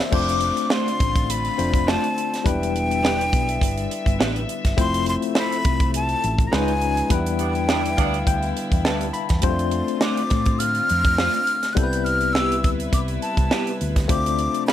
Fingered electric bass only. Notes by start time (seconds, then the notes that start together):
0.13 F1
1.01 A1
1.59 F1
2.46 E1
3.33 B1
3.62 G1
4.06 G1
4.20 A1
4.65 G1
4.78 F1
5.65 C2
6.24 A1
6.53 C#2
7.11 E2
7.99 D2
8.27 D2
8.72 E2
8.86 D2
9.30 E2
9.44 F2
10.31 A2
10.91 F2
11.77 C2
12.65 D2
12.93 C2
13.38 C2
13.82 D2
14.10 D2